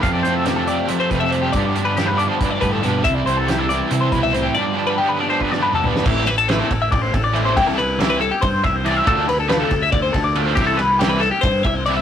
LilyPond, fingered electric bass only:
\new Staff \with { instrumentName = "Fingered electric bass" } { \clef bass \time 7/8 \key c \major \tempo 4 = 140 f,8 f,4. f8 f,4 | g,2 g,8 g,8 g,8 | c,8 c,4. c8 c,4 | r2. r8 |
a,,4. a,,8 a,,8 a,,4 | c,2 g,8 c,4 | d,4. d,8 d,8 d,4 | c,2 g,8 c,4 | }